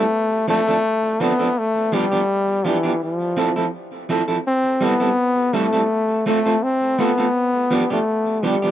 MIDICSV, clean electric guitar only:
0, 0, Header, 1, 2, 480
1, 0, Start_track
1, 0, Key_signature, 0, "minor"
1, 0, Tempo, 722892
1, 1040, Time_signature, 4, 2, 24, 8
1, 5783, End_track
2, 0, Start_track
2, 0, Title_t, "Clean electric guitar"
2, 0, Program_c, 0, 27
2, 316, Note_on_c, 0, 53, 77
2, 320, Note_on_c, 0, 60, 80
2, 320, Note_on_c, 0, 62, 80
2, 326, Note_on_c, 0, 69, 86
2, 393, Note_off_c, 0, 53, 0
2, 395, Note_off_c, 0, 60, 0
2, 395, Note_off_c, 0, 62, 0
2, 398, Note_off_c, 0, 69, 0
2, 447, Note_on_c, 0, 69, 65
2, 453, Note_on_c, 0, 62, 62
2, 454, Note_on_c, 0, 60, 55
2, 457, Note_on_c, 0, 53, 53
2, 499, Note_off_c, 0, 69, 0
2, 502, Note_off_c, 0, 60, 0
2, 502, Note_off_c, 0, 62, 0
2, 504, Note_off_c, 0, 53, 0
2, 798, Note_on_c, 0, 53, 80
2, 802, Note_on_c, 0, 60, 75
2, 804, Note_on_c, 0, 62, 87
2, 808, Note_on_c, 0, 69, 88
2, 874, Note_off_c, 0, 53, 0
2, 876, Note_off_c, 0, 60, 0
2, 877, Note_off_c, 0, 62, 0
2, 879, Note_off_c, 0, 69, 0
2, 925, Note_on_c, 0, 69, 64
2, 929, Note_on_c, 0, 62, 62
2, 931, Note_on_c, 0, 60, 49
2, 934, Note_on_c, 0, 53, 48
2, 978, Note_off_c, 0, 69, 0
2, 980, Note_off_c, 0, 62, 0
2, 981, Note_off_c, 0, 60, 0
2, 982, Note_off_c, 0, 53, 0
2, 1277, Note_on_c, 0, 53, 85
2, 1281, Note_on_c, 0, 59, 87
2, 1283, Note_on_c, 0, 62, 88
2, 1286, Note_on_c, 0, 67, 93
2, 1353, Note_off_c, 0, 53, 0
2, 1355, Note_off_c, 0, 59, 0
2, 1356, Note_off_c, 0, 62, 0
2, 1358, Note_off_c, 0, 67, 0
2, 1406, Note_on_c, 0, 67, 68
2, 1410, Note_on_c, 0, 62, 67
2, 1412, Note_on_c, 0, 59, 67
2, 1415, Note_on_c, 0, 53, 53
2, 1459, Note_off_c, 0, 67, 0
2, 1461, Note_off_c, 0, 62, 0
2, 1462, Note_off_c, 0, 59, 0
2, 1463, Note_off_c, 0, 53, 0
2, 1756, Note_on_c, 0, 53, 74
2, 1760, Note_on_c, 0, 59, 73
2, 1766, Note_on_c, 0, 62, 79
2, 1767, Note_on_c, 0, 67, 87
2, 1833, Note_off_c, 0, 53, 0
2, 1835, Note_off_c, 0, 59, 0
2, 1838, Note_off_c, 0, 62, 0
2, 1839, Note_off_c, 0, 67, 0
2, 1881, Note_on_c, 0, 67, 67
2, 1886, Note_on_c, 0, 62, 64
2, 1890, Note_on_c, 0, 59, 56
2, 1893, Note_on_c, 0, 53, 54
2, 1936, Note_off_c, 0, 67, 0
2, 1939, Note_off_c, 0, 62, 0
2, 1941, Note_off_c, 0, 59, 0
2, 1942, Note_off_c, 0, 53, 0
2, 2236, Note_on_c, 0, 53, 79
2, 2238, Note_on_c, 0, 60, 89
2, 2243, Note_on_c, 0, 64, 90
2, 2244, Note_on_c, 0, 69, 86
2, 2313, Note_off_c, 0, 53, 0
2, 2314, Note_off_c, 0, 60, 0
2, 2316, Note_off_c, 0, 64, 0
2, 2317, Note_off_c, 0, 69, 0
2, 2365, Note_on_c, 0, 69, 62
2, 2367, Note_on_c, 0, 64, 66
2, 2370, Note_on_c, 0, 60, 52
2, 2374, Note_on_c, 0, 53, 54
2, 2418, Note_off_c, 0, 69, 0
2, 2419, Note_off_c, 0, 64, 0
2, 2421, Note_off_c, 0, 60, 0
2, 2423, Note_off_c, 0, 53, 0
2, 2717, Note_on_c, 0, 53, 77
2, 2721, Note_on_c, 0, 60, 82
2, 2723, Note_on_c, 0, 64, 89
2, 2726, Note_on_c, 0, 69, 85
2, 2793, Note_off_c, 0, 53, 0
2, 2796, Note_off_c, 0, 60, 0
2, 2796, Note_off_c, 0, 64, 0
2, 2798, Note_off_c, 0, 69, 0
2, 2841, Note_on_c, 0, 69, 59
2, 2845, Note_on_c, 0, 64, 54
2, 2849, Note_on_c, 0, 60, 46
2, 2852, Note_on_c, 0, 53, 47
2, 2896, Note_off_c, 0, 69, 0
2, 2898, Note_off_c, 0, 64, 0
2, 2900, Note_off_c, 0, 60, 0
2, 2902, Note_off_c, 0, 53, 0
2, 3191, Note_on_c, 0, 55, 90
2, 3198, Note_on_c, 0, 60, 99
2, 3200, Note_on_c, 0, 64, 92
2, 3202, Note_on_c, 0, 69, 90
2, 3271, Note_off_c, 0, 55, 0
2, 3274, Note_off_c, 0, 60, 0
2, 3275, Note_off_c, 0, 64, 0
2, 3276, Note_off_c, 0, 69, 0
2, 3321, Note_on_c, 0, 69, 65
2, 3324, Note_on_c, 0, 64, 61
2, 3328, Note_on_c, 0, 60, 55
2, 3331, Note_on_c, 0, 55, 55
2, 3376, Note_off_c, 0, 69, 0
2, 3378, Note_off_c, 0, 64, 0
2, 3379, Note_off_c, 0, 60, 0
2, 3381, Note_off_c, 0, 55, 0
2, 3675, Note_on_c, 0, 55, 77
2, 3676, Note_on_c, 0, 60, 84
2, 3680, Note_on_c, 0, 64, 89
2, 3684, Note_on_c, 0, 69, 90
2, 3752, Note_off_c, 0, 55, 0
2, 3753, Note_off_c, 0, 60, 0
2, 3755, Note_off_c, 0, 64, 0
2, 3757, Note_off_c, 0, 69, 0
2, 3803, Note_on_c, 0, 69, 64
2, 3807, Note_on_c, 0, 64, 58
2, 3809, Note_on_c, 0, 60, 57
2, 3813, Note_on_c, 0, 55, 50
2, 3857, Note_off_c, 0, 69, 0
2, 3859, Note_off_c, 0, 64, 0
2, 3860, Note_off_c, 0, 60, 0
2, 3862, Note_off_c, 0, 55, 0
2, 4158, Note_on_c, 0, 57, 80
2, 4162, Note_on_c, 0, 60, 80
2, 4162, Note_on_c, 0, 65, 78
2, 4167, Note_on_c, 0, 69, 84
2, 4233, Note_off_c, 0, 57, 0
2, 4236, Note_off_c, 0, 60, 0
2, 4236, Note_off_c, 0, 65, 0
2, 4238, Note_off_c, 0, 69, 0
2, 4286, Note_on_c, 0, 69, 62
2, 4289, Note_on_c, 0, 65, 61
2, 4293, Note_on_c, 0, 60, 65
2, 4295, Note_on_c, 0, 57, 50
2, 4339, Note_off_c, 0, 69, 0
2, 4340, Note_off_c, 0, 65, 0
2, 4342, Note_off_c, 0, 60, 0
2, 4343, Note_off_c, 0, 57, 0
2, 4639, Note_on_c, 0, 57, 88
2, 4640, Note_on_c, 0, 60, 95
2, 4645, Note_on_c, 0, 65, 97
2, 4649, Note_on_c, 0, 69, 88
2, 4714, Note_off_c, 0, 57, 0
2, 4714, Note_off_c, 0, 60, 0
2, 4717, Note_off_c, 0, 65, 0
2, 4719, Note_off_c, 0, 69, 0
2, 4766, Note_on_c, 0, 69, 60
2, 4769, Note_on_c, 0, 65, 56
2, 4773, Note_on_c, 0, 60, 51
2, 4775, Note_on_c, 0, 57, 49
2, 4818, Note_off_c, 0, 69, 0
2, 4820, Note_off_c, 0, 65, 0
2, 4821, Note_off_c, 0, 60, 0
2, 4822, Note_off_c, 0, 57, 0
2, 5117, Note_on_c, 0, 53, 91
2, 5120, Note_on_c, 0, 59, 97
2, 5126, Note_on_c, 0, 62, 93
2, 5127, Note_on_c, 0, 67, 93
2, 5192, Note_off_c, 0, 53, 0
2, 5194, Note_off_c, 0, 59, 0
2, 5197, Note_off_c, 0, 62, 0
2, 5197, Note_off_c, 0, 67, 0
2, 5247, Note_on_c, 0, 67, 68
2, 5250, Note_on_c, 0, 62, 60
2, 5251, Note_on_c, 0, 59, 57
2, 5256, Note_on_c, 0, 53, 53
2, 5298, Note_off_c, 0, 67, 0
2, 5300, Note_off_c, 0, 59, 0
2, 5300, Note_off_c, 0, 62, 0
2, 5303, Note_off_c, 0, 53, 0
2, 5597, Note_on_c, 0, 53, 75
2, 5601, Note_on_c, 0, 59, 77
2, 5603, Note_on_c, 0, 62, 83
2, 5605, Note_on_c, 0, 67, 80
2, 5672, Note_off_c, 0, 53, 0
2, 5674, Note_off_c, 0, 59, 0
2, 5675, Note_off_c, 0, 62, 0
2, 5676, Note_off_c, 0, 67, 0
2, 5725, Note_on_c, 0, 67, 69
2, 5731, Note_on_c, 0, 62, 56
2, 5733, Note_on_c, 0, 59, 59
2, 5738, Note_on_c, 0, 53, 52
2, 5777, Note_off_c, 0, 67, 0
2, 5780, Note_off_c, 0, 62, 0
2, 5781, Note_off_c, 0, 59, 0
2, 5783, Note_off_c, 0, 53, 0
2, 5783, End_track
0, 0, End_of_file